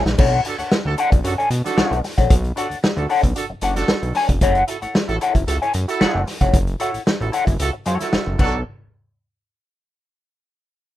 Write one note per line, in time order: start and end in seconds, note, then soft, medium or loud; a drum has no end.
0.05 0.16 A#1 medium
0.05 muted clean electric guitar stroke soft
0.05 snare medium
0.18 0.41 B1 loud
0.18 0.39 D4 medium
0.18 0.39 A4 medium
0.18 0.39 C#5 medium
0.18 0.40 F#5 medium
0.18 kick loud
0.18 crash loud
0.45 0.54 D4 medium
0.45 0.55 F#4 medium
0.45 0.54 A4 medium
0.45 muted clean electric guitar stroke soft
0.45 closed hi-hat medium
0.58 0.63 D2 medium
0.58 0.75 D4 medium
0.58 0.75 A4 medium
0.58 0.74 C#5 medium
0.58 0.74 F#5 medium
0.58 closed hi-hat soft
0.72 snare loud
0.85 0.96 D2 loud
0.85 0.93 D4 medium
0.85 0.93 F#4 medium
0.85 0.93 A4 loud
0.85 muted clean electric guitar stroke soft
0.98 1.18 D4 medium
0.98 1.12 A4 loud
0.98 1.12 C#5 medium
0.98 1.11 F#5 loud
0.98 closed hi-hat medium
1.12 1.22 B1 medium
1.12 muted clean electric guitar stroke medium
1.12 kick loud
1.12 closed hi-hat medium
1.24 1.36 F#2 loud
1.24 1.34 D4 medium
1.24 1.33 F#4 loud
1.24 1.34 A4 medium
1.24 muted clean electric guitar stroke soft
1.24 closed hi-hat medium
1.38 1.50 D4 medium
1.38 1.50 A4 medium
1.38 1.50 C#5 medium
1.38 1.51 G#5 medium
1.38 closed hi-hat soft
1.50 1.62 B2 loud
1.50 muted clean electric guitar stroke soft
1.50 closed hi-hat medium
1.64 2.02 D4 loud
1.64 2.02 F#4 loud
1.64 2.02 A4 loud
1.64 muted clean electric guitar stroke soft
1.64 snare soft
1.64 closed hi-hat medium
1.77 1.83 B1 medium
1.77 1.98 D4 medium
1.77 1.98 A4 loud
1.77 1.98 C#5 medium
1.77 1.98 F#5 medium
1.77 snare loud
1.91 2.02 B1 medium
1.91 closed hi-hat soft
2.04 muted clean electric guitar stroke medium
2.04 snare soft
2.04 open hi-hat medium
2.18 2.28 A#1 medium
2.18 2.34 D4 medium
2.18 2.33 A4 soft
2.18 2.33 C#5 medium
2.18 2.33 F#5 medium
2.18 kick medium
2.18 closed hi-hat soft
2.30 2.52 B1 loud
2.30 kick loud
2.30 closed hi-hat medium
2.44 closed hi-hat soft
2.56 2.77 D4 medium
2.56 2.65 D4 medium
2.56 2.65 F#4 medium
2.56 2.65 A4 medium
2.56 2.77 A4 medium
2.56 2.78 C#5 medium
2.56 2.78 F#5 medium
2.56 closed hi-hat medium
2.70 2.75 D2 soft
2.70 closed hi-hat soft
2.83 muted clean electric guitar stroke soft
2.83 snare loud
2.97 3.07 D2 loud
2.97 3.05 D4 medium
2.97 3.05 F#4 medium
2.97 3.05 A4 medium
2.97 muted clean electric guitar stroke medium
2.97 closed hi-hat soft
3.09 3.30 D4 medium
3.09 3.24 A4 loud
3.09 3.23 C#5 loud
3.09 3.22 F#5 loud
3.09 open hi-hat medium
3.23 3.34 B1 medium
3.23 muted clean electric guitar stroke soft
3.23 kick medium
3.23 closed hi-hat medium
3.35 3.44 D4 medium
3.35 3.44 F#4 medium
3.35 3.44 A4 medium
3.35 closed hi-hat medium
3.49 3.55 F#1 soft
3.49 muted clean electric guitar stroke soft
3.61 3.84 F#1 medium
3.61 3.83 D4 medium
3.61 3.76 A4 medium
3.61 3.76 C#5 medium
3.61 3.75 F#5 medium
3.61 closed hi-hat medium
3.75 4.13 D4 medium
3.75 4.13 F#4 medium
3.75 4.12 A4 loud
3.75 muted clean electric guitar stroke soft
3.75 snare soft
3.75 closed hi-hat medium
3.88 3.94 B1 soft
3.88 muted clean electric guitar stroke soft
3.88 snare loud
4.02 4.13 B1 medium
4.02 closed hi-hat soft
4.15 4.31 D4 medium
4.15 4.29 A4 medium
4.15 4.29 C#5 medium
4.15 4.29 G#5 medium
4.15 snare soft
4.15 open hi-hat medium
4.29 4.39 F1 medium
4.29 muted clean electric guitar stroke soft
4.29 kick medium
4.29 closed hi-hat medium
4.41 4.64 F#1 loud
4.41 4.62 E4 medium
4.41 4.62 A4 medium
4.41 4.63 C#5 loud
4.41 4.63 F#5 loud
4.41 kick loud
4.41 closed hi-hat loud
4.55 closed hi-hat soft
4.68 4.77 E4 medium
4.68 4.77 F#4 medium
4.68 4.77 A4 medium
4.68 muted clean electric guitar stroke soft
4.68 closed hi-hat medium
4.82 4.87 A1 medium
4.82 4.98 E4 soft
4.82 4.98 A4 medium
4.82 4.97 C#5 medium
4.82 4.97 F#5 medium
4.82 closed hi-hat soft
4.95 snare loud
5.08 5.19 A1 loud
5.08 5.16 E4 medium
5.08 5.17 F#4 medium
5.08 5.16 A4 loud
5.08 muted clean electric guitar stroke soft
5.08 closed hi-hat soft
5.21 5.42 E4 medium
5.21 5.36 A4 loud
5.21 5.35 C#5 medium
5.21 5.34 F#5 medium
5.21 closed hi-hat medium
5.35 5.45 F#1 medium
5.35 muted clean electric guitar stroke soft
5.35 kick medium
5.35 closed hi-hat medium
5.47 5.59 C#2 loud
5.47 5.56 E4 medium
5.47 5.56 F#4 medium
5.47 5.56 A4 loud
5.47 muted clean electric guitar stroke soft
5.47 closed hi-hat loud
5.62 5.73 E4 medium
5.62 5.74 A4 medium
5.62 5.74 C#5 medium
5.62 5.75 G#5 medium
5.62 closed hi-hat soft
5.74 5.86 F#2 medium
5.74 closed hi-hat medium
5.88 6.25 E4 medium
5.88 6.25 F#4 loud
5.88 6.25 A4 loud
5.88 muted clean electric guitar stroke soft
5.88 closed hi-hat medium
6.00 6.06 F#1 soft
6.00 6.21 E4 medium
6.00 6.21 A4 loud
6.00 6.22 C#5 medium
6.00 6.22 F#5 loud
6.00 snare loud
6.15 6.25 F#1 medium
6.27 muted clean electric guitar stroke soft
6.27 snare soft
6.27 open hi-hat medium
6.41 6.51 F1 medium
6.41 6.57 E4 medium
6.41 6.57 A4 medium
6.41 6.57 C#5 medium
6.41 6.56 F#5 medium
6.41 kick loud
6.41 closed hi-hat medium
6.53 6.76 F#1 loud
6.53 kick loud
6.53 closed hi-hat medium
6.67 closed hi-hat soft
6.80 7.00 E4 medium
6.80 6.89 E4 medium
6.80 6.89 F#4 medium
6.80 6.89 A4 medium
6.80 7.01 A4 medium
6.80 7.01 C#5 medium
6.80 7.01 F#5 medium
6.80 closed hi-hat medium
6.94 6.99 A1 soft
6.94 closed hi-hat soft
7.06 muted clean electric guitar stroke soft
7.06 snare loud
7.20 7.31 A1 loud
7.20 7.29 E4 medium
7.20 7.29 F#4 medium
7.20 7.29 A4 medium
7.20 muted clean electric guitar stroke soft
7.20 closed hi-hat soft
7.32 7.53 E4 medium
7.32 7.47 A4 medium
7.32 7.46 C#5 medium
7.32 7.45 F#5 medium
7.32 closed hi-hat medium
7.47 7.57 F#1 medium
7.47 muted clean electric guitar stroke soft
7.47 kick medium
7.47 closed hi-hat medium
7.60 7.71 C#2 medium
7.60 7.69 E4 medium
7.60 7.69 F#4 medium
7.60 7.69 A4 loud
7.60 closed hi-hat medium
7.73 muted clean electric guitar stroke soft
7.86 7.98 F#2 loud
7.86 8.06 E4 medium
7.86 8.00 A4 medium
7.86 7.99 C#5 medium
7.86 7.98 F#5 medium
7.86 closed hi-hat medium
8.00 8.37 E4 medium
8.00 8.37 F#4 medium
8.00 8.37 A4 medium
8.00 muted clean electric guitar stroke soft
8.00 snare soft
8.00 closed hi-hat medium
8.12 8.18 F#1 soft
8.12 muted clean electric guitar stroke soft
8.12 snare loud
8.27 8.37 F#1 medium
8.39 8.64 B1 loud
8.39 8.58 F#3 loud
8.39 8.55 D4 medium
8.39 8.58 D4 loud
8.39 8.56 A4 medium
8.39 8.58 A4 loud
8.39 8.56 C#5 medium
8.39 8.56 F#5 medium
8.39 kick loud
8.39 crash medium